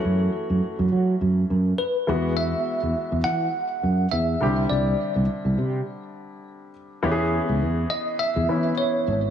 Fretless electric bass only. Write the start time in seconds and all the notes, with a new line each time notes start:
0.05 F#2
0.50 F#2
0.79 F#2
0.92 F#3
1.21 F#2
1.50 F#2
2.08 E2
2.83 E2
3.12 E2
3.25 E3
3.83 F#2
4.12 E2
4.41 C2
4.71 C2
5.16 C2
5.45 C2
5.58 C3
7.04 E2
7.49 C#2
7.62 E2
8.36 E2
8.49 E3
9.07 G#1